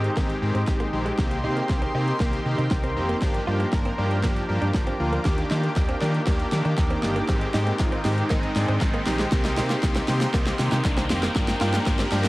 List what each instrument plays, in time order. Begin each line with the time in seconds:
Already playing: analog polysynth D#3 G#3 C4 G4, ambient pad D#4 G#4 G5 C6, riser
0.04 closed hi-hat
0.16 fingered electric bass G#1, analog polysynth D#3 G#3 C4 G4, clean electric guitar A#3, kick, snare, closed hi-hat
0.30 closed hi-hat
0.42 fingered electric bass G#2, analog polysynth D#3 G#3 C4 G4, muted clean electric guitar stroke
0.55 fingered electric bass G#2, clean electric guitar C4, closed hi-hat
0.67 fingered electric bass G#1, analog polysynth D#3 G#3 C4 G4, kick, snare, closed hi-hat
0.80 clean electric guitar A#3, closed hi-hat
0.93 fingered electric bass A#1, analog polysynth D#3 G#3 C4 G4, muted clean electric guitar stroke
1.06 clean electric guitar G#3, closed hi-hat
1.18 fingered electric bass C2, analog polysynth D#3 A#3 C4 G4, ambient pad A#4, kick, snare, closed hi-hat
1.31 muted clean electric guitar stroke, closed hi-hat
1.44 fingered electric bass C3, analog polysynth D#3 A#3 C4 G4, clean electric guitar D#4
1.57 clean electric guitar A#3, closed hi-hat
1.69 fingered electric bass C2, analog polysynth D#3 A#3 C4 G4, muted clean electric guitar stroke, kick, snare, closed hi-hat
1.82 clean electric guitar C4, closed hi-hat
1.95 fingered electric bass C3, analog polysynth D#3 A#3 C4 G4, clean electric guitar D#4
2.08 closed hi-hat
2.20 fingered electric bass C2, analog polysynth D#3 A#3 C4 G4, clean electric guitar A#3, kick, snare, closed hi-hat
2.33 closed hi-hat
2.45 fingered electric bass C3, analog polysynth D#3 A#3 C4 G4, muted clean electric guitar stroke
2.58 fingered electric bass C3, clean electric guitar D#4, closed hi-hat
2.71 fingered electric bass C2, analog polysynth D#3 A#3 C4 G4, kick, snare, closed hi-hat
2.84 clean electric guitar C4, closed hi-hat
2.96 fingered electric bass F1, analog polysynth D#3 A#3 C4 G4, muted clean electric guitar stroke
3.09 clean electric guitar A#3, closed hi-hat
3.22 fingered electric bass G1, analog polysynth F3 A#3 D4 G4, ambient pad F4 D6, kick, snare, closed hi-hat
3.34 muted clean electric guitar stroke, closed hi-hat
3.47 fingered electric bass G2, analog polysynth F3 A#3 D4 G4, clean electric guitar F4
3.60 clean electric guitar A#3, closed hi-hat
3.73 fingered electric bass G1, analog polysynth F3 A#3 D4 A#4, muted clean electric guitar stroke, kick, snare, closed hi-hat
3.85 clean electric guitar C4, closed hi-hat
3.98 fingered electric bass G2, analog polysynth F3 A#3 D4 G4, clean electric guitar D4
4.11 closed hi-hat
4.23 fingered electric bass G1, analog polysynth F3 A#3 D4 G4, clean electric guitar A#3, kick, snare, closed hi-hat
4.37 closed hi-hat
4.49 fingered electric bass G2, analog polysynth F3 A#3 D4 G4, muted clean electric guitar stroke
4.62 fingered electric bass G2, clean electric guitar D4, closed hi-hat
4.74 fingered electric bass G1, analog polysynth F3 A#3 D4 G4, kick, snare, closed hi-hat
4.87 clean electric guitar C4, closed hi-hat
5.00 fingered electric bass D2, analog polysynth F3 A#3 D4 F4, muted clean electric guitar stroke
5.13 clean electric guitar A#3, closed hi-hat
5.25 fingered electric bass D#2, analog polysynth D#3 A#3 D4 G4, ambient pad D#4, kick, snare, closed hi-hat
5.38 muted clean electric guitar stroke, closed hi-hat
5.51 analog polysynth D#3 A#3 D4 G4, fingered electric bass D#3, clean electric guitar D#4, snare
5.63 clean electric guitar A#3, closed hi-hat
5.76 fingered electric bass D#2, analog polysynth D#3 A#3 D4 G4, muted clean electric guitar stroke, kick, snare, closed hi-hat
5.89 clean electric guitar C4, closed hi-hat
6.01 analog polysynth D#3 A#3 D4 G4, fingered electric bass D#3, clean electric guitar D4, snare
6.14 closed hi-hat
6.27 fingered electric bass D#2, analog polysynth D#3 A#3 D4 G4, clean electric guitar A#3, kick, snare, closed hi-hat
6.40 closed hi-hat
6.52 analog polysynth D#3 A#3 D4 G4, fingered electric bass D#3, muted clean electric guitar stroke, snare
6.65 fingered electric bass D#3, clean electric guitar D4, closed hi-hat
6.78 fingered electric bass D#2, analog polysynth D#3 A#3 D4 G4, kick, snare, closed hi-hat
6.90 clean electric guitar C4, closed hi-hat
7.03 fingered electric bass G1, analog polysynth D#3 A#3 D4 G4, muted clean electric guitar stroke, snare
7.16 clean electric guitar A#3, closed hi-hat
7.28 fingered electric bass G#1, analog polysynth D#3 G#3 C4 G4, ambient pad G#4 C6, kick, snare, closed hi-hat
7.41 muted clean electric guitar stroke, closed hi-hat
7.54 fingered electric bass G#2, analog polysynth D#3 G#3 C4 G4, clean electric guitar D#4, snare, open hi-hat
7.67 clean electric guitar A#3, closed hi-hat
7.79 fingered electric bass G#1, analog polysynth D#3 G#3 C4 F4, muted clean electric guitar stroke, kick, snare, closed hi-hat
7.92 clean electric guitar C4, closed hi-hat
8.04 fingered electric bass G#2, analog polysynth D#3 G#3 C4 G4, clean electric guitar D#4, snare, open hi-hat
8.18 closed hi-hat
8.30 fingered electric bass G#1, analog polysynth D#3 G#3 C4 D#4, clean electric guitar A#3, kick, snare, closed hi-hat
8.43 closed hi-hat
8.55 fingered electric bass G#2, analog polysynth D#3 G#3 C4 D4, muted clean electric guitar stroke, snare, open hi-hat
8.68 fingered electric bass G#2, clean electric guitar C4, closed hi-hat
8.81 fingered electric bass G#1, analog polysynth D#3 G#3 C4 D#4, kick, snare, closed hi-hat
8.94 clean electric guitar A#3, closed hi-hat
9.06 fingered electric bass A#1, analog polysynth D#3 G#3 C4 G4, muted clean electric guitar stroke, snare, open hi-hat
9.19 clean electric guitar G#3, snare, closed hi-hat
9.32 fingered electric bass C2, analog polysynth D#3 A#3 C4 G4, ambient pad A#4 G5, kick, snare, closed hi-hat, shaker
9.45 muted clean electric guitar stroke, snare, closed hi-hat, shaker
9.57 fingered electric bass C3, analog polysynth D#3 A#3 C4 G4, clean electric guitar D#4, snare, open hi-hat, shaker
9.70 clean electric guitar A#3, snare, closed hi-hat, shaker
9.83 fingered electric bass C2, analog polysynth D#3 A#3 C4 G4, muted clean electric guitar stroke, kick, snare, closed hi-hat, shaker
9.95 clean electric guitar C4, snare, closed hi-hat, shaker
10.08 fingered electric bass C3, analog polysynth D#3 A#3 C4 G4, clean electric guitar D#4, snare, open hi-hat, shaker
10.21 snare, closed hi-hat, shaker
10.33 fingered electric bass C2, analog polysynth D#3 A#3 C4 G4, clean electric guitar A#3, kick, snare, closed hi-hat, shaker
10.47 snare, closed hi-hat, shaker
10.59 fingered electric bass C3, analog polysynth D#3 A#3 C4 G4, muted clean electric guitar stroke, snare, open hi-hat, shaker
10.72 fingered electric bass C3, clean electric guitar D#4, snare, closed hi-hat, shaker
10.84 fingered electric bass C2, analog polysynth D#3 A#3 C4 D4, kick, snare, closed hi-hat, shaker
10.97 clean electric guitar C4, snare, closed hi-hat, shaker
11.10 fingered electric bass F1, analog polysynth D#3 A#3 C4 G4, snare, open hi-hat, shaker
11.23 clean electric guitar A#3, snare, closed hi-hat, shaker
11.35 fingered electric bass G1, analog polysynth F3 A#3 D4 G4, ambient pad F4 D6, kick, snare, closed hi-hat, shaker
11.48 muted clean electric guitar stroke, snare, closed hi-hat, shaker
11.61 fingered electric bass G2, analog polysynth F3 A#3 D4 G4, clean electric guitar F4, snare, open hi-hat, shaker
11.74 clean electric guitar A#3, snare, closed hi-hat, shaker
11.86 fingered electric bass G1, analog polysynth F3 A#3 D4 G4, muted clean electric guitar stroke, kick, snare, closed hi-hat, shaker
11.99 clean electric guitar C4, snare, closed hi-hat, shaker
12.12 fingered electric bass G2, analog polysynth F3 A#3 D4 G4, clean electric guitar D4, snare, open hi-hat, shaker
12.25 snare, closed hi-hat, shaker